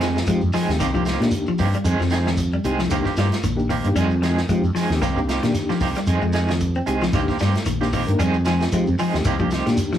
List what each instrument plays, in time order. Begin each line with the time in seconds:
Already playing: fretless electric bass F2
0.00 clean electric guitar D#3 F3 G#3 C4 G#4, snare, closed hi-hat, shekere
0.15 snare, shekere
0.26 fretless electric bass F3, reed electric piano G#3 C4 D#4 G4, clean electric guitar G#3, kick, closed hi-hat, shekere
0.41 fretless electric bass F2, shekere
0.53 clean electric guitar D#3 F3 G#3 C4 G#4, snare, open hi-hat, shekere
0.68 fretless electric bass D#2, reed electric piano G#3 C4 D#4 G4, snare, shekere
0.79 fretless electric bass C2, clean electric guitar D#3 A#3 C4 G4, kick, snare, closed hi-hat, shekere
0.94 clean electric guitar F3 A#3 C4 G4, reed electric piano A#3 D4 D#4 G4, kick, shekere
1.05 clean electric guitar D#3 A#3 C4 G4, snare, closed hi-hat, shekere
1.20 fretless electric bass A#2, clean electric guitar D#3, reed electric piano A#3 D4 D#4 G4, snare, closed hi-hat, shekere
1.31 closed hi-hat, shekere
1.47 clean electric guitar F3, muted fretless electric bass stroke, shekere
1.58 fretless electric bass G2, clean electric guitar D#3 A#3 C4 G4, kick, open hi-hat, shekere
1.73 clean electric guitar G3, closed hi-hat, shekere
1.84 fretless electric bass F2, clean electric guitar D#3 G#3 C4 G#4, closed hi-hat, shekere
1.99 fretless electric bass F2, clean electric guitar F3, snare, shekere
2.10 clean electric guitar D#3 C4 G#4, muted clean electric guitar stroke, snare, closed hi-hat, shekere
2.26 clean electric guitar D#3, snare, shekere
2.37 kick, closed hi-hat, shekere
2.52 clean electric guitar G3, shekere
2.64 fretless electric bass C2, clean electric guitar D#3 G#3 C4 G#4, reed electric piano G#3 C4 D#4 G4, closed hi-hat, shekere
2.79 clean electric guitar F3, snare, shekere
2.89 fretless electric bass C2, clean electric guitar D#3 A#3 C4 G4, reed electric piano A#3 D4 D#4 G4, kick, closed hi-hat, shekere
3.05 clean electric guitar A#3 C4 G4, kick, snare, shekere
3.17 fretless electric bass G2, clean electric guitar G3 A#3 C4 G4, snare, closed hi-hat, shekere
3.32 snare, closed hi-hat, shekere
3.43 fretless electric bass A#1, clean electric guitar D#3, closed hi-hat, shekere
3.56 reed electric piano A#3 D4 D#4 G4, shekere
3.69 clean electric guitar D#3 A#3 C4 G4, kick, open hi-hat, shekere
3.84 fretless electric bass G2, reed electric piano A#3 D4 D#4 G4, closed hi-hat, shekere
3.95 fretless electric bass F2, clean electric guitar D#3 G3 G#3 C4 G#4, closed hi-hat, shekere
4.11 shekere
4.22 clean electric guitar D#3 F3 G#3 C4 G#4, snare, closed hi-hat, shekere
4.38 snare, shekere
4.49 fretless electric bass F3, clean electric guitar G#3, reed electric piano G#3 C4 D#4 G4, kick, closed hi-hat, shekere
4.63 fretless electric bass F2, shekere
4.75 clean electric guitar D#3 F3 G#3 C4 G#4, snare, open hi-hat, shekere
4.90 fretless electric bass D#2, reed electric piano G#3 C4 D#4 G4, snare, shekere
5.01 fretless electric bass C2, clean electric guitar D#3 A#3 C4 G4, kick, snare, closed hi-hat, shekere
5.17 reed electric piano A#3 D4 D#4 G4, kick, shekere
5.27 clean electric guitar D#3 A#3 C4 G4, snare, closed hi-hat, shekere
5.43 fretless electric bass A#2, clean electric guitar D#3, reed electric piano A#3 D4 D#4 G4, snare, closed hi-hat, shekere
5.54 snare, closed hi-hat, shekere
5.69 clean electric guitar F3 A#3 C4 G4, muted fretless electric bass stroke, snare, shekere
5.80 fretless electric bass C2, clean electric guitar D#3 A#3 C4 G4, kick, snare, open hi-hat, shekere
5.95 clean electric guitar G3, snare, closed hi-hat, shekere
6.07 fretless electric bass F2, clean electric guitar D#3 G#3 C4 G#4, closed hi-hat, shekere
6.22 fretless electric bass F2, clean electric guitar G#3, shekere
6.33 clean electric guitar D#3 G#3 G#4, snare, closed hi-hat, shekere
6.48 clean electric guitar D#3, snare, shekere
6.60 kick, closed hi-hat, shekere
6.75 clean electric guitar C4, shekere
6.86 fretless electric bass C2, clean electric guitar D#3 G#3 C4 G#4, reed electric piano G#3 C4 D#4 G4, closed hi-hat, shekere
7.01 clean electric guitar F3, snare, shekere
7.13 fretless electric bass C2, clean electric guitar D#3 A#3 C4 G4, reed electric piano A#3 D4 D#4 G4, kick, snare, closed hi-hat, shekere
7.28 clean electric guitar A#3 C4 G4, kick, snare, shekere
7.39 fretless electric bass G2, clean electric guitar G3 A#3 C4 G4, snare, closed hi-hat, shekere
7.53 snare, closed hi-hat, shekere
7.65 fretless electric bass A#1, clean electric guitar D#3, closed hi-hat, shekere
7.81 reed electric piano A#3 D4 D#4 G4, clean electric guitar A#3 C4 G4, snare, shekere
7.93 clean electric guitar D#3 A#3 C4 G4, kick, open hi-hat, shekere
8.06 fretless electric bass G2, reed electric piano A#3 D4 D#4 A#4, closed hi-hat, shekere
8.19 fretless electric bass F2, clean electric guitar D#3 G3 G#3 C4 G#4, closed hi-hat, shekere
8.34 shekere
8.45 clean electric guitar D#3 F3 G#3 C4 G#4, snare, closed hi-hat, shekere
8.60 snare, shekere
8.72 fretless electric bass F3, reed electric piano G#3 C4 D#4 G4, clean electric guitar G#3, kick, closed hi-hat, shekere
8.87 fretless electric bass F2, shekere
8.99 clean electric guitar D#3 F3 G#3 C4 G#4, open hi-hat, shekere
9.13 fretless electric bass D#2, reed electric piano G#3 C4 D#4 G4, snare, shekere
9.25 fretless electric bass C2, clean electric guitar D#3 A#3 C4 G4, kick, closed hi-hat, shekere
9.39 clean electric guitar F3 A#3 C4 G4, reed electric piano A#3 D4 D#4 G4, kick, shekere
9.51 clean electric guitar D#3 C4 G4, muted clean electric guitar stroke, snare, closed hi-hat, shekere
9.65 fretless electric bass A#2, clean electric guitar D#3, reed electric piano A#3 D4 D#4 G4, snare, closed hi-hat, shekere
9.77 closed hi-hat, shekere
9.92 clean electric guitar F3, muted fretless electric bass stroke, snare, shekere